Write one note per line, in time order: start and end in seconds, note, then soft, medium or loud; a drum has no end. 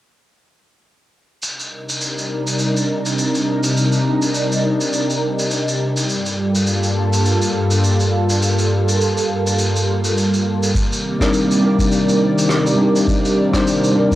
1.42 6.05 C3 medium
1.42 10.71 G3 medium
1.42 6.05 D4 medium
1.42 6.05 D#4 medium
1.42 6.05 A#4 medium
1.42 shaker medium
1.60 shaker soft
1.89 shaker medium
2.01 shaker medium
2.18 shaker soft
2.47 shaker medium
2.59 shaker medium
2.77 shaker soft
3.06 shaker medium
3.19 shaker medium
3.35 shaker soft
3.64 shaker medium
3.77 shaker medium
3.93 shaker soft
4.22 shaker medium
4.35 shaker medium
4.52 shaker soft
4.81 shaker medium
4.93 shaker medium
5.10 shaker soft
5.39 shaker medium
5.51 shaker medium
5.68 shaker soft
5.97 shaker medium
6.09 10.71 G2 medium
6.09 14.15 A#3 medium
6.09 10.71 F4 medium
6.09 10.71 A4 medium
6.09 shaker medium
6.26 shaker soft
6.55 shaker medium
6.67 shaker medium
6.83 shaker soft
7.13 shaker medium
7.25 shaker medium
7.42 shaker soft
7.71 shaker medium
7.84 shaker medium
8.00 shaker soft
8.30 shaker medium
8.42 shaker medium
8.59 shaker medium
8.88 shaker medium
9.01 shaker medium
9.18 shaker soft
9.47 shaker medium
9.59 shaker medium
9.76 shaker medium
10.05 shaker medium
10.18 shaker medium
10.34 shaker soft
10.63 shaker medium
10.75 14.15 C3 medium
10.75 14.15 D#3 medium
10.75 14.15 G3 medium
10.75 14.15 D5 medium
10.75 kick loud
10.75 shaker medium
10.92 shaker soft
11.19 11.58 G3 medium
11.19 11.59 C4 medium
11.19 11.59 D4 medium
11.19 11.60 D#4 medium
11.19 11.60 A#4 medium
11.19 kick medium
11.19 cross-stick medium
11.19 shaker medium
11.33 shaker medium
11.51 shaker soft
11.59 12.74 G3 medium
11.59 12.75 C4 medium
11.59 12.76 D4 medium
11.64 12.77 D#4 medium
11.64 12.78 A#4 medium
11.79 kick medium
11.79 shaker medium
11.92 shaker medium
12.09 shaker soft
12.38 shaker medium
12.49 cross-stick medium
12.49 shaker medium
12.66 shaker soft
12.75 13.48 G3 medium
12.75 13.49 C4 medium
12.75 13.50 D4 medium
12.81 13.51 D#4 medium
12.81 13.52 G4 medium
12.96 shaker medium
13.07 kick loud
13.07 shaker medium
13.25 shaker soft
13.51 13.90 G3 medium
13.51 13.92 C4 medium
13.51 13.92 D4 medium
13.51 13.92 D#4 medium
13.51 kick medium
13.51 cross-stick medium
13.51 shaker medium
13.56 13.93 C5 loud
13.67 shaker medium
13.84 shaker soft
13.92 14.15 G3 medium
13.92 14.15 C4 medium
13.92 14.15 D4 medium
13.97 14.15 D#4 medium
13.97 14.15 A#4 medium
14.11 kick medium
14.11 shaker medium